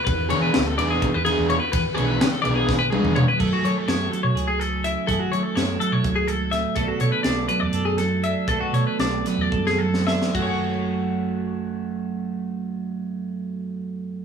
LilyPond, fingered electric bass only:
\new Staff \with { instrumentName = "Fingered electric bass" } { \clef bass \time 7/8 \key fis \minor \tempo 4 = 125 e,8 e8 d,8 e,8 r16 e,8 e,8 r16 | e,16 r16 b,,8 cis8 b,,4~ b,,16 e,8 r16 | fis,16 r16 fis16 r16 fis,8 r16 b,16 cis,4. | fis,16 r16 fis16 r16 fis,8 r16 b,16 cis,4. |
b,,16 r16 b,16 r16 b,,8 r16 e,16 fis,4. | b,,16 r16 b,16 r16 b,,8 r16 e,16 fis,4. | fis,,2.~ fis,,8~ | fis,,2.~ fis,,8 | }